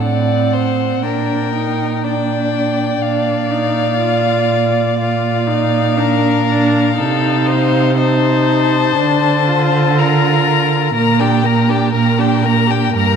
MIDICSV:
0, 0, Header, 1, 5, 480
1, 0, Start_track
1, 0, Tempo, 1016949
1, 965, Tempo, 985222
1, 1439, Time_signature, 4, 2, 24, 8
1, 3365, Tempo, 996678
1, 6347, End_track
2, 0, Start_track
2, 0, Title_t, "Violin"
2, 0, Program_c, 0, 40
2, 0, Note_on_c, 0, 78, 55
2, 484, Note_on_c, 0, 79, 58
2, 491, Note_off_c, 0, 78, 0
2, 962, Note_off_c, 0, 79, 0
2, 965, Note_on_c, 0, 79, 67
2, 1442, Note_on_c, 0, 77, 77
2, 1449, Note_off_c, 0, 79, 0
2, 2400, Note_off_c, 0, 77, 0
2, 2403, Note_on_c, 0, 77, 79
2, 3845, Note_on_c, 0, 81, 80
2, 3852, Note_off_c, 0, 77, 0
2, 4817, Note_on_c, 0, 82, 77
2, 4825, Note_off_c, 0, 81, 0
2, 5278, Note_off_c, 0, 82, 0
2, 5281, Note_on_c, 0, 82, 75
2, 5401, Note_on_c, 0, 79, 77
2, 5409, Note_off_c, 0, 82, 0
2, 5524, Note_on_c, 0, 82, 69
2, 5532, Note_off_c, 0, 79, 0
2, 5639, Note_on_c, 0, 79, 70
2, 5646, Note_off_c, 0, 82, 0
2, 5761, Note_off_c, 0, 79, 0
2, 5764, Note_on_c, 0, 82, 72
2, 5885, Note_on_c, 0, 79, 69
2, 5892, Note_off_c, 0, 82, 0
2, 6008, Note_on_c, 0, 82, 79
2, 6015, Note_off_c, 0, 79, 0
2, 6129, Note_on_c, 0, 79, 74
2, 6137, Note_off_c, 0, 82, 0
2, 6246, Note_off_c, 0, 79, 0
2, 6251, Note_on_c, 0, 82, 80
2, 6347, Note_off_c, 0, 82, 0
2, 6347, End_track
3, 0, Start_track
3, 0, Title_t, "Violin"
3, 0, Program_c, 1, 40
3, 12, Note_on_c, 1, 74, 69
3, 252, Note_on_c, 1, 72, 66
3, 259, Note_off_c, 1, 74, 0
3, 491, Note_off_c, 1, 72, 0
3, 501, Note_on_c, 1, 70, 59
3, 963, Note_on_c, 1, 74, 67
3, 971, Note_off_c, 1, 70, 0
3, 2882, Note_off_c, 1, 74, 0
3, 2885, Note_on_c, 1, 70, 77
3, 3356, Note_off_c, 1, 70, 0
3, 3370, Note_on_c, 1, 69, 76
3, 3606, Note_on_c, 1, 72, 87
3, 3613, Note_off_c, 1, 69, 0
3, 3846, Note_off_c, 1, 72, 0
3, 3848, Note_on_c, 1, 72, 88
3, 4818, Note_on_c, 1, 70, 75
3, 4825, Note_off_c, 1, 72, 0
3, 5277, Note_off_c, 1, 70, 0
3, 5280, Note_on_c, 1, 70, 75
3, 5406, Note_on_c, 1, 67, 66
3, 5413, Note_off_c, 1, 70, 0
3, 5523, Note_on_c, 1, 70, 75
3, 5531, Note_off_c, 1, 67, 0
3, 5645, Note_on_c, 1, 67, 80
3, 5652, Note_off_c, 1, 70, 0
3, 5751, Note_off_c, 1, 67, 0
3, 5754, Note_on_c, 1, 70, 72
3, 5876, Note_on_c, 1, 67, 65
3, 5884, Note_off_c, 1, 70, 0
3, 5991, Note_on_c, 1, 70, 65
3, 5998, Note_off_c, 1, 67, 0
3, 6109, Note_on_c, 1, 67, 67
3, 6116, Note_off_c, 1, 70, 0
3, 6234, Note_off_c, 1, 67, 0
3, 6237, Note_on_c, 1, 70, 76
3, 6347, Note_off_c, 1, 70, 0
3, 6347, End_track
4, 0, Start_track
4, 0, Title_t, "Viola"
4, 0, Program_c, 2, 41
4, 1, Note_on_c, 2, 60, 66
4, 485, Note_on_c, 2, 62, 61
4, 492, Note_off_c, 2, 60, 0
4, 722, Note_off_c, 2, 62, 0
4, 725, Note_on_c, 2, 63, 67
4, 961, Note_on_c, 2, 62, 67
4, 968, Note_off_c, 2, 63, 0
4, 1437, Note_off_c, 2, 62, 0
4, 1441, Note_on_c, 2, 62, 75
4, 1677, Note_on_c, 2, 63, 74
4, 1684, Note_off_c, 2, 62, 0
4, 1913, Note_off_c, 2, 63, 0
4, 1916, Note_on_c, 2, 65, 72
4, 2389, Note_off_c, 2, 65, 0
4, 2399, Note_on_c, 2, 65, 70
4, 2634, Note_on_c, 2, 63, 81
4, 2642, Note_off_c, 2, 65, 0
4, 2877, Note_on_c, 2, 62, 75
4, 2884, Note_off_c, 2, 63, 0
4, 3116, Note_off_c, 2, 62, 0
4, 3119, Note_on_c, 2, 62, 83
4, 3356, Note_off_c, 2, 62, 0
4, 3361, Note_on_c, 2, 63, 82
4, 3835, Note_off_c, 2, 63, 0
4, 3845, Note_on_c, 2, 63, 92
4, 4323, Note_off_c, 2, 63, 0
4, 4333, Note_on_c, 2, 62, 85
4, 4573, Note_on_c, 2, 65, 82
4, 4580, Note_off_c, 2, 62, 0
4, 4806, Note_off_c, 2, 65, 0
4, 4809, Note_on_c, 2, 65, 84
4, 5273, Note_off_c, 2, 65, 0
4, 5282, Note_on_c, 2, 58, 82
4, 5400, Note_on_c, 2, 62, 72
4, 5407, Note_off_c, 2, 58, 0
4, 5514, Note_on_c, 2, 58, 68
4, 5522, Note_off_c, 2, 62, 0
4, 5639, Note_on_c, 2, 62, 65
4, 5646, Note_off_c, 2, 58, 0
4, 5755, Note_off_c, 2, 62, 0
4, 5758, Note_on_c, 2, 58, 78
4, 5878, Note_on_c, 2, 62, 70
4, 5885, Note_off_c, 2, 58, 0
4, 6001, Note_on_c, 2, 58, 71
4, 6008, Note_off_c, 2, 62, 0
4, 6121, Note_on_c, 2, 62, 63
4, 6129, Note_off_c, 2, 58, 0
4, 6237, Note_off_c, 2, 62, 0
4, 6240, Note_on_c, 2, 58, 77
4, 6347, Note_off_c, 2, 58, 0
4, 6347, End_track
5, 0, Start_track
5, 0, Title_t, "Cello"
5, 0, Program_c, 3, 42
5, 0, Note_on_c, 3, 45, 70
5, 483, Note_off_c, 3, 45, 0
5, 485, Note_on_c, 3, 46, 67
5, 1418, Note_off_c, 3, 46, 0
5, 1438, Note_on_c, 3, 46, 82
5, 3366, Note_on_c, 3, 48, 88
5, 3373, Note_off_c, 3, 46, 0
5, 4328, Note_on_c, 3, 50, 89
5, 4335, Note_off_c, 3, 48, 0
5, 5275, Note_off_c, 3, 50, 0
5, 5278, Note_on_c, 3, 46, 102
5, 5703, Note_off_c, 3, 46, 0
5, 5760, Note_on_c, 3, 46, 93
5, 6186, Note_off_c, 3, 46, 0
5, 6238, Note_on_c, 3, 43, 98
5, 6347, Note_off_c, 3, 43, 0
5, 6347, End_track
0, 0, End_of_file